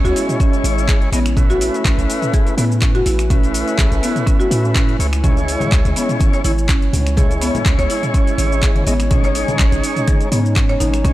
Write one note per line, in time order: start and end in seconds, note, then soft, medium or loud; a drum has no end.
0.00 1.10 G#3 medium
0.00 1.33 G#3 medium
0.00 1.10 C#4 medium
0.00 9.07 C#4 medium
0.00 1.10 E4 medium
0.00 9.07 E4 medium
0.00 1.10 C#5 loud
0.00 1.33 C#5 medium
0.04 0.13 C#2 loud
0.04 0.15 F#4 loud
0.04 closed hi-hat soft
0.04 shaker soft
0.16 0.28 E4 medium
0.16 open hi-hat medium
0.16 shaker medium
0.29 closed hi-hat soft
0.29 mid tom medium
0.29 shaker soft
0.40 0.53 C#4 loud
0.40 kick loud
0.40 closed hi-hat medium
0.40 shaker medium
0.53 closed hi-hat soft
0.53 shaker soft
0.64 1.09 G#1 medium
0.64 open hi-hat medium
0.64 shaker loud
0.78 shaker soft
0.88 1.01 G#4 medium
0.88 finger snap loud
0.88 kick loud
0.88 clap loud
0.88 closed hi-hat medium
0.88 shaker medium
1.02 closed hi-hat soft
1.12 1.70 A1 medium
1.12 1.20 G#3 medium
1.12 1.20 B3 medium
1.12 1.20 C#4 medium
1.12 1.20 E4 medium
1.12 1.20 D#5 loud
1.12 open hi-hat medium
1.12 shaker loud
1.26 finger snap medium
1.26 closed hi-hat soft
1.26 shaker soft
1.37 2.55 A3 medium
1.37 5.20 A3 medium
1.37 2.55 C#4 medium
1.37 1.44 C#4 medium
1.37 2.55 E4 medium
1.37 5.20 B4 medium
1.37 2.55 B4 loud
1.37 kick loud
1.37 closed hi-hat medium
1.37 mid tom medium
1.37 shaker medium
1.50 1.60 F#4 loud
1.50 closed hi-hat soft
1.50 shaker soft
1.61 1.73 E4 medium
1.61 open hi-hat medium
1.61 shaker loud
1.74 closed hi-hat soft
1.74 shaker soft
1.85 1.96 A1 loud
1.85 1.97 C#4 loud
1.85 finger snap loud
1.85 kick loud
1.85 clap loud
1.85 closed hi-hat medium
1.85 shaker medium
1.98 2.07 A1 loud
1.98 closed hi-hat soft
1.98 shaker soft
2.10 open hi-hat medium
2.10 shaker loud
2.22 closed hi-hat soft
2.22 mid tom medium
2.22 shaker soft
2.33 2.46 G#4 medium
2.33 kick loud
2.33 closed hi-hat medium
2.33 shaker medium
2.47 closed hi-hat soft
2.47 shaker soft
2.57 3.03 A2 medium
2.57 2.65 A3 medium
2.57 2.65 B3 medium
2.57 2.65 C#4 medium
2.57 2.65 E4 medium
2.57 2.65 B4 medium
2.57 open hi-hat medium
2.57 shaker loud
2.72 shaker soft
2.82 2.89 C#4 medium
2.82 finger snap loud
2.82 kick loud
2.82 clap loud
2.82 closed hi-hat medium
2.82 shaker medium
2.95 3.05 F#4 loud
2.95 closed hi-hat soft
3.06 3.63 A1 medium
3.06 3.18 E4 medium
3.06 open hi-hat medium
3.06 shaker loud
3.19 finger snap medium
3.19 closed hi-hat soft
3.19 shaker soft
3.30 4.97 A3 medium
3.30 3.43 C#4 loud
3.30 4.97 C#4 medium
3.30 4.97 E4 medium
3.30 4.97 B4 loud
3.30 kick loud
3.30 closed hi-hat medium
3.30 mid tom medium
3.30 shaker medium
3.43 closed hi-hat soft
3.43 shaker soft
3.54 open hi-hat medium
3.54 shaker medium
3.68 closed hi-hat soft
3.68 shaker soft
3.78 3.89 A1 loud
3.78 3.91 G#4 medium
3.78 finger snap loud
3.78 kick loud
3.78 clap loud
3.78 closed hi-hat medium
3.78 shaker medium
3.91 4.01 A1 loud
3.91 closed hi-hat soft
3.91 shaker soft
4.03 4.10 B3 medium
4.03 open hi-hat medium
4.03 shaker loud
4.16 closed hi-hat soft
4.16 mid tom medium
4.16 shaker soft
4.27 4.34 C#4 medium
4.27 kick loud
4.27 closed hi-hat medium
4.27 shaker medium
4.40 4.50 F#4 loud
4.40 closed hi-hat soft
4.40 shaker soft
4.51 4.96 A2 medium
4.51 4.63 E4 medium
4.51 open hi-hat medium
4.51 shaker medium
4.65 shaker soft
4.75 4.88 C#4 loud
4.75 finger snap loud
4.75 kick loud
4.75 clap loud
4.75 closed hi-hat medium
4.75 shaker medium
4.89 closed hi-hat soft
4.99 5.57 C#2 medium
4.99 5.07 A3 medium
4.99 5.07 C#4 medium
4.99 5.07 E4 medium
4.99 5.07 C#5 loud
4.99 open hi-hat medium
4.99 shaker loud
5.13 finger snap medium
5.13 closed hi-hat soft
5.13 shaker soft
5.24 11.13 G#3 medium
5.24 6.42 G#3 medium
5.24 5.36 C#4 loud
5.24 6.42 C#4 medium
5.24 6.42 E4 medium
5.24 11.00 C#5 medium
5.24 6.42 C#5 loud
5.24 kick loud
5.24 closed hi-hat medium
5.24 mid tom medium
5.24 high conga medium
5.24 low conga medium
5.24 shaker medium
5.37 closed hi-hat soft
5.37 muted conga medium
5.37 shaker soft
5.48 open hi-hat medium
5.48 shaker loud
5.60 closed hi-hat soft
5.60 muted conga soft
5.60 high conga medium
5.60 low conga medium
5.60 shaker soft
5.72 5.83 C#2 loud
5.72 5.85 G#4 medium
5.72 finger snap loud
5.72 kick loud
5.72 clap loud
5.72 closed hi-hat medium
5.72 shaker medium
5.84 5.94 C#2 loud
5.84 closed hi-hat soft
5.84 muted conga soft
5.84 high conga medium
5.84 shaker soft
5.96 6.03 B3 medium
5.96 open hi-hat medium
5.96 shaker loud
6.09 closed hi-hat soft
6.09 mid tom medium
6.09 shaker soft
6.19 6.28 C#4 medium
6.19 kick loud
6.19 closed hi-hat medium
6.19 muted conga soft
6.19 high conga loud
6.19 shaker medium
6.33 6.44 C#5 loud
6.33 closed hi-hat soft
6.33 shaker soft
6.44 6.90 G#1 medium
6.44 6.52 G#3 medium
6.44 6.52 C#4 medium
6.44 6.56 E4 medium
6.44 6.52 E4 medium
6.44 6.52 C#5 medium
6.44 open hi-hat medium
6.44 muted conga soft
6.44 high conga medium
6.44 shaker medium
6.58 shaker soft
6.69 6.81 C#4 loud
6.69 finger snap loud
6.69 kick loud
6.69 clap loud
6.69 closed hi-hat medium
6.69 muted conga soft
6.69 shaker medium
6.82 closed hi-hat soft
6.93 7.51 C#2 medium
6.93 open hi-hat medium
6.93 muted conga medium
6.93 low conga medium
6.93 shaker loud
7.07 finger snap medium
7.07 closed hi-hat soft
7.07 shaker soft
7.17 8.84 G#3 medium
7.17 8.84 C#4 medium
7.17 8.84 E4 medium
7.17 7.30 G#4 medium
7.17 8.84 C#5 loud
7.17 kick loud
7.17 closed hi-hat medium
7.17 mid tom medium
7.17 high conga medium
7.17 low conga medium
7.17 shaker medium
7.30 closed hi-hat soft
7.30 muted conga soft
7.30 shaker soft
7.41 7.49 B3 medium
7.41 open hi-hat medium
7.41 shaker medium
7.54 closed hi-hat soft
7.54 muted conga soft
7.54 high conga medium
7.54 low conga loud
7.54 shaker soft
7.66 7.76 C#2 loud
7.66 7.73 C#4 medium
7.66 finger snap loud
7.66 kick loud
7.66 clap loud
7.66 closed hi-hat medium
7.66 shaker medium
7.78 7.88 C#2 medium
7.78 7.89 C#5 loud
7.78 closed hi-hat soft
7.78 muted conga soft
7.78 high conga medium
7.78 shaker soft
7.90 8.02 E4 medium
7.90 open hi-hat medium
7.90 shaker medium
8.03 closed hi-hat soft
8.03 mid tom medium
8.03 shaker soft
8.14 8.27 C#4 loud
8.14 kick loud
8.14 closed hi-hat medium
8.14 muted conga soft
8.14 shaker soft
8.27 closed hi-hat soft
8.27 shaker soft
8.38 8.83 G#1 medium
8.38 open hi-hat medium
8.38 muted conga medium
8.38 shaker medium
8.52 shaker soft
8.61 8.75 G#4 medium
8.61 finger snap loud
8.61 kick loud
8.61 clap loud
8.61 closed hi-hat medium
8.61 muted conga soft
8.61 shaker medium
8.75 closed hi-hat soft
8.75 high conga medium
8.87 9.44 G#1 medium
8.87 8.94 G#3 medium
8.87 8.94 B3 medium
8.87 8.94 C#4 medium
8.87 8.94 E4 medium
8.87 8.94 D#5 loud
8.87 open hi-hat medium
8.87 muted conga medium
8.87 shaker medium
9.00 finger snap medium
9.00 closed hi-hat soft
9.00 shaker soft
9.11 10.29 G#3 medium
9.11 11.13 C#4 medium
9.11 10.29 C#4 medium
9.11 9.18 C#4 medium
9.11 11.13 D#4 medium
9.11 10.29 D#4 medium
9.11 10.29 C#5 loud
9.11 kick loud
9.11 closed hi-hat medium
9.11 mid tom medium
9.11 high conga medium
9.11 low conga loud
9.11 shaker medium
9.23 9.34 C#5 loud
9.23 closed hi-hat soft
9.23 muted conga medium
9.23 shaker soft
9.35 9.47 D#4 medium
9.35 open hi-hat medium
9.35 shaker medium
9.48 closed hi-hat soft
9.48 muted conga soft
9.48 high conga medium
9.48 low conga medium
9.48 shaker soft
9.59 9.70 G#1 loud
9.59 9.72 C#4 loud
9.59 finger snap loud
9.59 kick loud
9.59 clap loud
9.59 closed hi-hat medium
9.59 shaker medium
9.72 9.81 G#1 loud
9.72 closed hi-hat medium
9.72 muted conga soft
9.72 high conga medium
9.72 shaker soft
9.84 open hi-hat medium
9.84 shaker medium
9.97 closed hi-hat soft
9.97 mid tom medium
9.97 shaker soft
10.08 10.20 G#4 medium
10.08 kick loud
10.08 closed hi-hat medium
10.08 muted conga soft
10.08 high conga loud
10.08 shaker medium
10.21 closed hi-hat soft
10.21 shaker soft
10.32 10.77 G#2 medium
10.32 10.39 G#3 medium
10.32 10.39 B3 medium
10.32 10.39 C#4 medium
10.32 10.39 D#4 medium
10.32 10.39 C#5 medium
10.32 open hi-hat medium
10.32 muted conga medium
10.32 high conga medium
10.32 shaker medium
10.46 shaker soft
10.56 10.63 C#4 medium
10.56 finger snap loud
10.56 kick loud
10.56 clap loud
10.56 closed hi-hat medium
10.56 muted conga soft
10.56 shaker medium
10.69 10.79 C#5 loud
10.69 closed hi-hat soft
10.80 11.13 G#1 medium
10.80 10.92 D#4 medium
10.80 open hi-hat medium
10.80 muted conga medium
10.80 low conga medium
10.80 shaker medium
10.94 finger snap medium
10.94 closed hi-hat soft
10.94 shaker soft
11.04 11.13 G#3 medium
11.04 11.13 C#4 loud
11.04 11.13 C#4 medium
11.04 11.13 D#4 medium
11.04 11.13 B4 medium
11.04 11.13 C#5 loud
11.04 kick loud
11.04 closed hi-hat medium
11.04 mid tom medium
11.04 high conga medium
11.04 low conga loud
11.04 shaker medium